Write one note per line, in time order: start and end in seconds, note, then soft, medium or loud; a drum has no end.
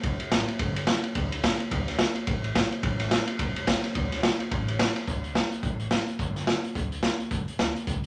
0.03 0.18 B1 medium
0.03 kick loud
0.03 ride medium
0.19 muted upright bass stroke medium
0.19 ride medium
0.31 0.46 A1 medium
0.31 snare loud
0.31 ride loud
0.48 ride medium
0.59 0.91 G1 medium
0.59 kick loud
0.59 ride medium
0.76 ride medium
0.87 snare loud
0.87 ride medium
1.04 muted upright bass stroke medium
1.04 ride medium
1.15 1.47 D2 medium
1.15 kick loud
1.15 ride medium
1.32 ride medium
1.43 kick medium
1.43 snare loud
1.43 ride medium
1.59 muted upright bass stroke medium
1.59 ride medium
1.71 2.03 D2 medium
1.71 kick loud
1.71 ride medium
1.88 snare soft
1.88 ride medium
1.99 snare loud
1.99 ride medium
2.16 muted upright bass stroke medium
2.16 ride medium
2.27 2.59 A1 medium
2.27 kick loud
2.27 ride medium
2.44 ride medium
2.55 kick medium
2.55 snare loud
2.55 ride medium
2.72 ride medium
2.83 3.15 A1 medium
2.83 kick loud
2.83 ride medium
3.00 snare soft
3.00 ride medium
3.11 snare loud
3.11 ride medium
3.28 ride medium
3.39 3.70 E1 medium
3.39 kick loud
3.39 ride medium
3.56 ride medium
3.67 kick medium
3.67 snare loud
3.67 ride loud
3.84 muted upright bass stroke medium
3.84 snare soft
3.84 ride medium
3.95 4.26 D2 medium
3.95 kick loud
3.95 ride medium
4.12 snare soft
4.12 ride medium
4.23 snare loud
4.23 ride medium
4.40 muted upright bass stroke medium
4.40 ride medium
4.51 4.83 A1 medium
4.51 kick loud
4.51 ride medium
4.68 ride medium
4.79 snare loud
4.79 ride medium
4.96 snare soft
4.96 ride medium
5.08 5.39 D2 medium
5.08 kick loud
5.08 closed hi-hat medium
5.24 closed hi-hat medium
5.35 snare loud
5.35 closed hi-hat medium
5.52 muted upright bass stroke medium
5.52 closed hi-hat medium
5.63 5.94 A1 medium
5.63 kick loud
5.63 closed hi-hat medium
5.80 closed hi-hat medium
5.91 snare loud
5.91 closed hi-hat medium
6.08 closed hi-hat medium
6.19 6.51 G1 medium
6.19 kick loud
6.19 closed hi-hat medium
6.36 snare soft
6.36 closed hi-hat medium
6.47 snare loud
6.47 closed hi-hat medium
6.64 muted upright bass stroke medium
6.64 closed hi-hat medium
6.75 7.07 D2 medium
6.75 kick loud
6.75 closed hi-hat medium
6.92 closed hi-hat medium
7.03 snare loud
7.03 closed hi-hat medium
7.20 muted upright bass stroke medium
7.20 closed hi-hat medium
7.31 7.43 G1 medium
7.31 kick loud
7.31 closed hi-hat medium
7.48 muted upright bass stroke medium
7.48 closed hi-hat medium
7.59 7.74 D2 medium
7.59 snare loud
7.59 closed hi-hat medium
7.76 muted upright bass stroke medium
7.76 closed hi-hat medium
7.87 8.02 C#2 medium
7.87 kick loud
7.87 closed hi-hat medium